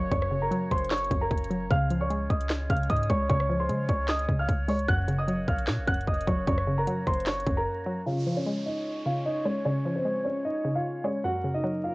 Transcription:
Already playing: 808-style bass F#1, synth pluck F#2 F#3, woodwind section A#3 C#4 F#4 C#5
0.12 808-style bass F#1, synth pluck F#2, grand piano C#5 C#6, kick, closed hi-hat
0.22 cross-stick
0.31 synth pluck C#3
0.42 grand piano A#4 A#5
0.51 synth pluck F#3, closed hi-hat
0.71 808-style bass F#1, grand piano C5 C6, kick, cross-stick, closed hi-hat
0.78 closed hi-hat
0.84 closed hi-hat
0.91 grand piano C#5 C#6, snare, clap, closed hi-hat
0.98 closed hi-hat
1.04 closed hi-hat
1.11 808-style bass F#1, synth pluck F#2, kick, closed hi-hat
1.21 grand piano A#4 A#5
1.31 808-style bass F#1, kick, closed hi-hat
1.37 closed hi-hat
1.44 closed hi-hat
1.50 synth pluck F#3, closed hi-hat
1.70 808-style bass C#2, synth pluck C#3, woodwind section G#3 F4 C#5, grand piano F5 F6, kick, closed hi-hat
1.90 synth pluck F3, closed hi-hat
2.01 grand piano C#5 C#6
2.10 synth pluck G#3, closed hi-hat
2.30 808-style bass C#2, grand piano D#5 D#6, kick, closed hi-hat
2.41 closed hi-hat
2.50 snare, clap, closed hi-hat
2.70 808-style bass C#2, synth pluck C#3, grand piano F5 F6, kick, closed hi-hat
2.77 closed hi-hat
2.83 closed hi-hat
2.90 808-style bass G#2, grand piano D#5 D#6, kick, closed hi-hat
2.96 closed hi-hat
3.03 closed hi-hat
3.09 808-style bass C#2, synth pluck G#3, grand piano C#5 C#6, kick, closed hi-hat
3.29 808-style bass C#2, synth pluck C#3, grand piano C#5 C#6, kick, closed hi-hat
3.40 cross-stick
3.49 synth pluck F3
3.60 grand piano C5 C6
3.69 808-style bass C#3, synth pluck G#3, closed hi-hat
3.89 808-style bass C#2, grand piano C#5 C#6, kick, closed hi-hat
4.08 grand piano D#5 D#6, snare, clap, closed hi-hat
4.19 closed hi-hat
4.29 808-style bass C#2, synth pluck C#3, kick, closed hi-hat
4.39 grand piano F5 F6
4.49 808-style bass C#2, kick, closed hi-hat
4.68 synth pluck G#3, grand piano C#5 C#6, closed hi-hat, open hi-hat
4.79 closed hi-hat
4.88 808-style bass F#1, synth pluck F#2, woodwind section A#3 C#4 F#4, grand piano F#5 F#6, kick, closed hi-hat
5.08 synth pluck C#3, closed hi-hat
5.19 grand piano D#5 D#6
5.28 synth pluck F#3, closed hi-hat
5.48 808-style bass A#1, grand piano F5 F6, kick, closed hi-hat
5.59 closed hi-hat
5.67 808-style bass A#2, snare, clap, closed hi-hat
5.78 808-style bass A#1
5.88 808-style bass F1, synth pluck F#2, grand piano F#5 F#6, kick, closed hi-hat
5.94 closed hi-hat
6.01 closed hi-hat
6.08 808-style bass F#1, grand piano D#5 D#6, kick, closed hi-hat
6.14 closed hi-hat
6.21 closed hi-hat
6.27 808-style bass F#1, synth pluck F#3, grand piano C#5 C#6, kick, closed hi-hat
6.47 808-style bass F#1, synth pluck F#2, grand piano C#5 C#6, kick, closed hi-hat
6.58 cross-stick
6.67 synth pluck C#3
6.78 grand piano A#4 A#5
6.87 synth pluck F#3, closed hi-hat
7.07 808-style bass F#1, grand piano C5 C6, kick, cross-stick, closed hi-hat
7.14 closed hi-hat
7.20 closed hi-hat
7.26 grand piano C#5 C#6, snare, clap, closed hi-hat
7.33 closed hi-hat
7.40 closed hi-hat
7.47 808-style bass F#1, synth pluck F#2, kick, closed hi-hat
7.57 grand piano A#4 A#5
7.86 synth pluck F#3
8.06 synth pluck C#3, woodwind section G#3 C#4 F4 C#5, grand piano F4 F5, downlifter
8.26 synth pluck F3
8.37 grand piano C#4 C#5
8.46 synth pluck G#3
8.66 grand piano D#4 D#5
9.06 synth pluck C#3, grand piano F4 F5
9.25 grand piano D#4 D#5
9.45 synth pluck G#3, grand piano C#4 C#5
9.65 synth pluck C#3, grand piano C#4 C#5
9.85 synth pluck F3
9.96 grand piano C4 C5
10.05 synth pluck G#3
10.24 grand piano C#4 C#5
10.45 grand piano D#4 D#5
10.65 synth pluck C#3
10.75 grand piano F4 F5
11.04 synth pluck G#3, grand piano C#4 C#5
11.24 synth pluck F#2, woodwind section F#3 A#3 A#4, grand piano F#4 F#5
11.44 synth pluck C#3
11.54 grand piano D#4 D#5
11.64 synth pluck F#3
11.84 grand piano F4 F5

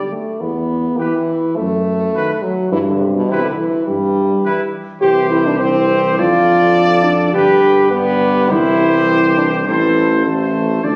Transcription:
Already playing: french horn G3
0.12 french horn A3
0.41 tuba E2, french horn B3
0.97 french horn E3, euphonium E3, flugelhorn G4, trumpet B4
1.56 tuba F#2, french horn A3
2.15 euphonium D#3, flugelhorn F#4, trumpet B4
2.43 french horn F#3
2.72 tuba G2, french horn E3
2.87 french horn D3
3.01 french horn C3
3.16 french horn B2
3.29 french horn C3, euphonium E3, flugelhorn E4, trumpet B4
3.45 french horn D3
3.58 french horn E3
3.87 tuba G2, french horn G3
4.44 euphonium E3, flugelhorn E4, trumpet B4
5.01 tuba C2, euphonium E3, french horn G4, flugelhorn G4, trumpet C5
5.31 french horn E4
5.46 french horn D4
5.59 euphonium E3, french horn C4, flugelhorn G4, trumpet C5
6.18 tuba F2, euphonium D3, french horn F4, flugelhorn A4, trumpet D5
7.05 french horn D4
7.34 tuba G2, euphonium D3, french horn G4, flugelhorn G4, trumpet B4
7.91 euphonium D3, french horn B3, flugelhorn G4, trumpet B4
8.51 tuba C2, euphonium E3, french horn E4, flugelhorn G4, trumpet C5
9.38 french horn D4
9.66 tuba A1, euphonium E3, french horn E4, flugelhorn A4, trumpet C5
10.25 euphonium E3, french horn A3, flugelhorn A4, trumpet C5
10.83 tuba D2, euphonium F3, french horn D4, flugelhorn A4, trumpet D5

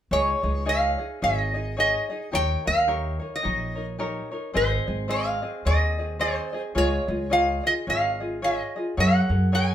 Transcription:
0.11 upright bass C#2, ukulele D#4 G#4 C#5 D#5, resonator guitar played with a steel bar C#5
0.42 upright bass C#2, ukulele D#4 G#4 D#5
0.65 ukulele D#4 G#4 C#5 D#5, resonator guitar played with a steel bar F5
0.98 ukulele D#4 G#4 D#5
1.22 upright bass G#1, ukulele D#4 G#4 C#5 D#5, resonator guitar played with a steel bar D#5
1.54 ukulele D#4 G#4 D#5
1.77 ukulele D#4 G#4 C#5 D#5, resonator guitar played with a steel bar D#5
2.10 ukulele D#4 G#4 D#5
2.32 upright bass D#2, ukulele D#4 G4 A#4 C#5, resonator guitar played with a steel bar G5
2.65 upright bass D#2, ukulele D#4 A#4 C#5, resonator guitar played with a steel bar F5
2.87 ukulele D#4 G4 A#4 C#5
3.19 ukulele D#4 A#4 C#5
3.36 resonator guitar played with a steel bar D#5
3.42 upright bass A#1, ukulele D#4 G4 A#4 C#5
3.75 ukulele D#4 A#4 C#5
3.98 ukulele D#4 G4 A#4 C#5
4.31 ukulele D#4 A#4 C#5
4.54 upright bass G#1, ukulele C4 G#4 C5 D#5, resonator guitar played with a steel bar C5
4.87 upright bass G#1, ukulele C4 G#4 D#5
5.08 ukulele C4 G#4 C5 D#5, resonator guitar played with a steel bar F5
5.42 ukulele C4 G#4 D#5
5.65 upright bass D#2, ukulele C4 G#4 C5 D#5, resonator guitar played with a steel bar D#5
5.98 ukulele C4 G#4 D#5
6.19 ukulele C4 G#4 C5 D#5, resonator guitar played with a steel bar C5
6.53 ukulele C4 G#4 D#5
6.75 upright bass C#2, ukulele F4 G#4 C#5 D#5, resonator guitar played with a steel bar C#5
7.07 upright bass C#2, ukulele F4 G#4 D#5
7.30 ukulele F4 G#4 C#5 D#5, resonator guitar played with a steel bar F5
7.63 ukulele F4 G#4 D#5, resonator guitar played with a steel bar D#5
7.87 upright bass G#1, ukulele F4 G#4 C#5 D#5, resonator guitar played with a steel bar F5
8.20 ukulele F4 G#4 D#5
8.42 ukulele F4 G#4 C#5 D#5, resonator guitar played with a steel bar D#5
8.76 ukulele F4 G#4 D#5
8.97 upright bass F#2, ukulele G#4 A#4 C#5 F#5, resonator guitar played with a steel bar F#5
9.29 upright bass F#2, ukulele G#4 A#4 F#5
9.52 ukulele G#4 A#4 C#5 F#5, resonator guitar played with a steel bar G#5

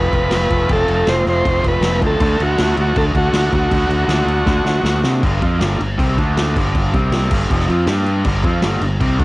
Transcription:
Already playing: fingered electric bass F1, overdriven electric guitar F3 A3 C4 F4, transistor combo organ B4
0.12 fingered electric bass F1, overdriven electric guitar A3 C4 F4, kick, crash
0.31 fingered electric bass F1, overdriven electric guitar F3 A3 C4, transistor combo organ B4, snare, crash
0.35 overdriven electric guitar F4
0.50 fingered electric bass F1, overdriven electric guitar A3 C4 F4, kick, crash
0.69 fingered electric bass F1, overdriven electric guitar F3 A3 C4 F4, transistor combo organ A4, kick, crash
0.88 fingered electric bass F1, crash
1.07 fingered electric bass F1, overdriven electric guitar F3 A3 C4 F4, transistor combo organ C5, snare, crash
1.26 fingered electric bass F1, transistor combo organ C5, snare, crash
1.45 fingered electric bass F1, overdriven electric guitar F3 A3 C4 F4, kick, crash
1.63 fingered electric bass F1, overdriven electric guitar A3 C4 F4, kick, crash
1.68 transistor combo organ B4
1.81 fingered electric bass F1, overdriven electric guitar F3 A3 C4, snare, crash
1.86 overdriven electric guitar F4
2.01 fingered electric bass D2, overdriven electric guitar A3 C4 F4, kick, crash
2.06 transistor combo organ A4
2.20 fingered electric bass D2, overdriven electric guitar D3 A3 D4 F#4, kick, crash
2.40 fingered electric bass D2, transistor combo organ F#4, crash
2.58 fingered electric bass D2, overdriven electric guitar D3 A3 D4 F#4, snare, crash
2.77 fingered electric bass D2, transistor combo organ F#4, crash
2.96 fingered electric bass D2, overdriven electric guitar D3 A3 D4 F#4, transistor combo organ A4, kick, crash
3.14 fingered electric bass D2, overdriven electric guitar A3 D4 F#4, transistor combo organ F#4, kick, crash
3.33 fingered electric bass D2, overdriven electric guitar D3 A3 D4 F#4, snare, crash
3.52 fingered electric bass D2, overdriven electric guitar A3 D4 F#4, transistor combo organ F#4, kick, crash
3.71 fingered electric bass D2, overdriven electric guitar D3 A3 D4 F#4, kick, crash
3.89 fingered electric bass D2, crash
4.08 fingered electric bass D2, overdriven electric guitar D3 A3 D4 F#4, snare, crash
4.26 fingered electric bass D2, crash
4.46 fingered electric bass D2, overdriven electric guitar D3 A3 D4 F#4, kick, snare
4.65 fingered electric bass D2, overdriven electric guitar A3 D4 F#4, snare
4.83 fingered electric bass D2, overdriven electric guitar D3 A3 D4 F#4, snare
5.03 fingered electric bass C3, overdriven electric guitar A3 D4 F#4, snare
5.22 fingered electric bass G1, overdriven electric guitar G2 D3 G3, kick, crash
5.40 fingered electric bass F2, overdriven electric guitar F3 C4 F4, kick, crash
5.59 fingered electric bass G1, overdriven electric guitar G2 D3 G3, snare, crash
5.79 fingered electric bass G1, overdriven electric guitar G2 D3, crash
5.98 fingered electric bass C2, overdriven electric guitar C3 G3 C4, kick, crash
6.17 fingered electric bass D2, overdriven electric guitar D3 A3 D4, kick, crash
6.37 snare, crash
6.55 fingered electric bass G1, overdriven electric guitar G2 D3 G3, kick, crash
6.75 kick, crash
6.93 fingered electric bass C2, overdriven electric guitar C3 G3 C4, kick, crash
7.12 snare, crash
7.31 fingered electric bass G1, overdriven electric guitar G2 D3 G3, kick, crash
7.50 fingered electric bass F1, overdriven electric guitar F2 C3 F3, kick, crash
7.60 snare
7.69 fingered electric bass F2, overdriven electric guitar F3 C4 F4, crash
7.87 fingered electric bass G2, overdriven electric guitar G3 D4 G4, snare, crash
8.06 crash
8.24 fingered electric bass G1, overdriven electric guitar G2 D3 G3, kick, crash
8.44 fingered electric bass F2, overdriven electric guitar F3 C4 F4, kick, crash
8.62 fingered electric bass G1, overdriven electric guitar G2 D3 G3, snare, crash
8.81 fingered electric bass G1, overdriven electric guitar G2 D3, crash
9.00 fingered electric bass C2, overdriven electric guitar C3 G3 C4, kick, crash
9.19 fingered electric bass D2, overdriven electric guitar D3 A3 D4, kick, crash

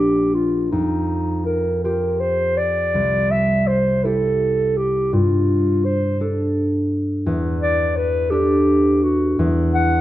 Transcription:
Already playing: harp A#1 A#3 C4 D4 F4, clarinet G4
0.34 clarinet F4
0.72 harp F2, clarinet D#4
1.46 clarinet A#4
1.84 harp F4 G4, clarinet A#4
2.20 clarinet C5
2.57 clarinet D5
2.94 harp C2
3.31 clarinet E5
3.67 clarinet C5
4.04 harp E4 G4, clarinet A4
4.77 clarinet G4
5.13 harp G2, clarinet F4
5.85 clarinet C5
6.20 harp D4 A4
7.26 harp E2
7.61 clarinet D5
7.96 clarinet B4
8.31 harp D4 A4, clarinet G4
9.03 clarinet F#4
9.39 harp E2
9.74 clarinet F#5

